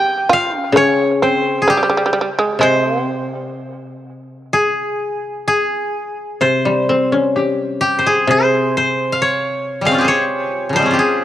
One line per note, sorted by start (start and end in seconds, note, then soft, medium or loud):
0.00 0.26 G4 medium
0.00 0.32 F5 loud
0.00 1.22 G5 loud
0.29 0.58 F4 medium
0.29 1.77 F5 loud
0.58 0.72 C#4 medium
0.72 2.60 C#3 medium
0.72 1.19 C#4 medium
0.77 1.28 C#5 medium
1.22 1.65 C4 medium
1.22 2.62 C5 medium
1.62 1.76 G#4 medium
1.68 1.75 G3 medium
1.68 3.74 G4 medium
1.77 1.82 G3 soft
1.83 1.88 G3 medium
1.90 1.96 G3 soft
1.97 2.05 G3 medium
2.06 2.12 G3 soft
2.13 2.20 G3 medium
2.21 2.28 G3 soft
2.39 2.60 G#3 medium
2.59 5.47 C3 soft
2.59 3.07 G#3 medium
2.59 4.34 C5 medium
3.07 4.03 C4 medium
4.53 5.47 G#4 medium
5.48 7.45 G#4 medium
6.41 8.26 C3 soft
6.41 7.98 C5 medium
6.65 8.53 G3 soft
6.89 8.76 C4 soft
7.12 8.98 C#4 soft
7.36 9.20 G4 soft
7.81 8.12 G4 medium
7.99 8.30 C5 medium
8.06 9.87 G#4 medium
8.27 10.95 C3 medium
8.27 8.77 C5 medium
8.77 9.28 C5 medium
9.12 9.86 F5 medium
9.22 9.94 C#5 medium
9.81 9.97 G3 soft
9.81 10.04 G#3 soft
9.86 10.14 C4 soft
9.86 11.24 F5 medium
9.91 10.11 C#4 soft
9.91 10.90 F4 soft
9.98 10.85 G4 medium
9.98 10.82 G#4 medium
10.05 10.75 C5 medium
10.05 10.82 C#5 medium
10.69 10.88 C#3 soft
10.69 11.00 F3 soft
10.76 10.92 G3 soft
10.76 11.00 G#3 soft
10.76 11.24 C5 medium
10.82 11.24 C4 soft
10.82 11.24 C#4 soft
10.91 11.24 F4 medium
10.91 11.24 G4 medium
10.99 11.24 G#4 medium